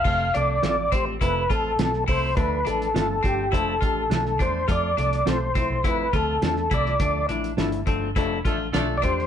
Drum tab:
CC |x---------------|----------------|----------------|----------------|
HH |--x-x-x-x-x-x-o-|x-xxx-x-x-x-x-x-|x-xxx-x-x-x-x-x-|x-xxxxx-x-x-x-x-|
SD |----o-------oo--|---oo-------oo--|---oo-------oo-o|----o-------o--o|
BD |o-----o-o-o---o-|o-----o-o-o---o-|o-----o-o-o---o-|o-----o-o-o---o-|